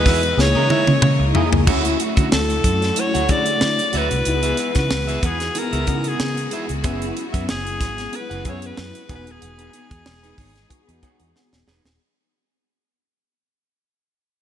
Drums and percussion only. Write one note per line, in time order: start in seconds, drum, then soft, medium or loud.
0.06 kick loud
0.06 snare soft
0.06 open hi-hat medium
0.23 closed hi-hat soft
0.39 snare medium
0.70 high tom medium
0.87 high tom medium
1.02 mid tom medium
1.35 floor tom medium
1.53 floor tom medium
1.67 kick loud
1.67 crash medium
1.85 closed hi-hat medium
2.00 closed hi-hat medium
2.17 kick medium
2.17 closed hi-hat medium
2.32 snare loud
2.50 closed hi-hat soft
2.64 kick medium
2.64 closed hi-hat medium
2.82 snare soft
2.82 closed hi-hat soft
2.96 closed hi-hat medium
3.15 closed hi-hat medium
3.29 kick medium
3.29 closed hi-hat medium
3.46 closed hi-hat medium
3.61 snare loud
3.79 closed hi-hat medium
3.93 closed hi-hat medium
4.11 closed hi-hat medium
4.25 closed hi-hat medium
4.43 closed hi-hat medium
4.57 closed hi-hat medium
4.75 kick medium
4.75 snare soft
4.75 closed hi-hat medium
4.91 snare loud
5.09 closed hi-hat soft
5.23 kick loud
5.23 closed hi-hat medium
5.40 snare soft
5.40 closed hi-hat soft
5.55 closed hi-hat medium
5.73 closed hi-hat medium
5.87 kick medium
5.87 closed hi-hat medium
6.04 closed hi-hat medium
6.20 snare loud
6.37 closed hi-hat medium
6.51 closed hi-hat medium
6.69 closed hi-hat medium
6.84 kick loud
6.84 closed hi-hat medium
7.02 closed hi-hat medium
7.17 closed hi-hat medium
7.34 kick medium
7.34 closed hi-hat medium
7.49 snare loud
7.67 closed hi-hat soft
7.81 kick medium
7.81 snare soft
7.81 closed hi-hat medium
7.98 snare soft
7.98 closed hi-hat soft
8.13 closed hi-hat medium
8.31 closed hi-hat soft
8.45 kick medium
8.45 closed hi-hat medium
8.62 closed hi-hat medium
8.77 snare loud
8.95 closed hi-hat medium
9.09 kick loud
9.09 closed hi-hat medium
9.27 closed hi-hat medium
9.42 closed hi-hat medium
9.59 closed hi-hat medium
9.73 closed hi-hat medium
9.91 kick medium
9.91 closed hi-hat medium
10.06 snare loud
10.24 closed hi-hat soft
10.38 kick medium
10.38 open hi-hat medium
10.56 snare soft
10.56 closed hi-hat soft
10.70 kick medium
10.70 closed hi-hat medium
10.89 closed hi-hat medium
11.03 kick medium
11.03 closed hi-hat medium
11.20 closed hi-hat medium
11.36 snare medium
11.53 snare medium
11.68 snare medium
11.85 snare medium